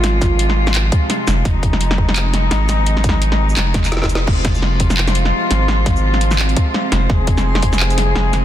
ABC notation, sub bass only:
X:1
M:4/4
L:1/8
Q:"Swing 16ths" 1/4=170
K:Fm
V:1 name="Sub bass" clef=bass
A,,,4- A,,, z2 F,,, | F,,,6 A,,,2- | A,,,4 F,,,4 | F,,,6 z A,,,- |
A,,,4- A,,, z2 F,,, | F,,,6 F,,,2 |]